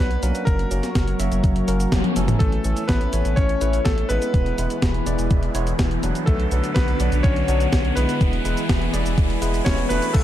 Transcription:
Already playing: B3 D4 F#4 B4
0.00 B1
0.11 closed hi-hat
0.23 B1 F#3 A#3 C#4 A#4, closed hi-hat, cabasa
0.35 closed hi-hat, cabasa
0.45 F#1 F#3 A#4 C#5, kick, closed hi-hat, cabasa
0.59 closed hi-hat
0.71 F#1 F#3 A#3 C#4 A#4, closed hi-hat, cabasa
0.83 snare, closed hi-hat, cabasa
0.95 F#1, kick, snare, closed hi-hat, cabasa
1.08 closed hi-hat
1.19 F#1 F#3 A#3 C#4 E5, closed hi-hat, cabasa
1.32 F#1, closed hi-hat, cabasa
1.44 F#1, kick, closed hi-hat, cabasa
1.56 closed hi-hat
1.68 F#1 F#3 A#3 C#4 A#4, closed hi-hat, cabasa
1.80 closed hi-hat, cabasa
1.92 F#1, kick, snare, closed hi-hat, high tom, cabasa
2.04 closed hi-hat, high tom
2.16 F#1 E3 A3 C#4 A4, closed hi-hat, cabasa
2.28 closed hi-hat, mid tom, cabasa
2.39 A1 A3 C#4 E4 A4, kick, closed hi-hat, riser, cabasa
2.52 closed hi-hat
2.64 A1 E3 A3 C#4 A4, closed hi-hat, cabasa
2.77 closed hi-hat, cabasa
2.88 A1 B3 B4, kick, snare, closed hi-hat, cabasa
3.01 closed hi-hat
3.13 A1 E3 A3 C#4 C#5, closed hi-hat, cabasa
3.25 A1, closed hi-hat, cabasa
3.36 A1 C#4 C#5, kick, closed hi-hat, cabasa
3.49 closed hi-hat
3.61 A1 E3 A3 C#4 B4, closed hi-hat, cabasa
3.73 closed hi-hat, cabasa
3.85 A1 A3 A4, kick, snare, closed hi-hat, cabasa
3.98 closed hi-hat
4.09 A1 G#3 B3 E4 B4, closed hi-hat, cabasa
4.22 closed hi-hat, cabasa
4.34 E1 E3 E4 G#4 B4, kick, closed hi-hat, cabasa
4.46 closed hi-hat
4.58 E1 G#3 B3 E4 B4, closed hi-hat, cabasa
4.70 closed hi-hat, cabasa
4.82 E1, kick, snare, closed hi-hat, cabasa
4.94 closed hi-hat
5.06 E1 G#3 B3 E4 D5, closed hi-hat, cabasa
5.19 E1, closed hi-hat, cabasa
5.31 E1, kick, closed hi-hat, cabasa
5.43 closed hi-hat
5.55 E1 G#3 B3 E4 C#5, closed hi-hat, cabasa
5.67 closed hi-hat, cabasa
5.79 E1, kick, snare, closed hi-hat, cabasa
5.91 closed hi-hat
6.03 E1 F#3 B3 D4 B4, closed hi-hat, cabasa
6.15 closed hi-hat, cabasa
6.26 B1 D3 A3 B3 F#4 A4, kick, closed hi-hat, cabasa
6.40 closed hi-hat
6.52 B1 F#3 B3 D4 B4, closed hi-hat, cabasa
6.64 closed hi-hat, cabasa
6.74 B1 B3 B4, kick, snare, closed hi-hat, cabasa
6.88 closed hi-hat
7.00 B1 F#3 B3 D4 D5, closed hi-hat, cabasa
7.12 B1, closed hi-hat, cabasa
7.23 B1 C#4 C#5, kick, closed hi-hat, cabasa
7.36 closed hi-hat
7.48 B1 F#3 B3 D4 C#5, closed hi-hat, cabasa
7.60 closed hi-hat, cabasa
7.73 B1, kick, snare, closed hi-hat, cabasa
7.85 closed hi-hat
7.96 B1 G#3 B3 E4 B4, closed hi-hat, cabasa
8.09 closed hi-hat, cabasa
8.21 E1 E3 E4 G#4 B4, kick, closed hi-hat, cabasa
8.33 closed hi-hat
8.45 E1 G#3 B3 E4 B4, closed hi-hat, cabasa
8.57 closed hi-hat, cabasa
8.69 E1, kick, snare, closed hi-hat, cabasa
8.82 closed hi-hat
8.93 E1 G#3 B3 E4 D5, closed hi-hat, cabasa
9.06 E1, closed hi-hat, cabasa
9.18 E1, kick, closed hi-hat, cabasa
9.30 closed hi-hat
9.42 E1 G#3 B3 E4 B4, closed hi-hat, cabasa
9.54 closed hi-hat, cabasa
9.65 E1 C#4 C#5, kick, snare, closed hi-hat, cabasa
9.78 closed hi-hat
9.89 E1 A3 B3 D4 F#4 B4, closed hi-hat, cabasa
10.02 closed hi-hat, cabasa
10.13 B1 A3 A4 B4 D5 F#5 B5, kick, closed hi-hat, crash, sub drop, cabasa

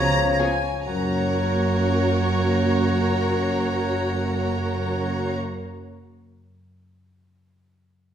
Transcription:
Already playing: C#2 C#3 F3 B3 F4 G#4 B4 C#5 A#5 G#6
0.08 B3
0.24 F4
0.31 A#5
0.39 B3 F4 G#4 C#5 G#5
0.55 B4
0.71 G#4
0.86 F#1 F#2 F#3 A#3 C#4 F#4 A#4 C#5 A#5 F#6
0.94 F#3
1.01 C#4
1.08 F#4
1.15 A#4
1.22 F#5

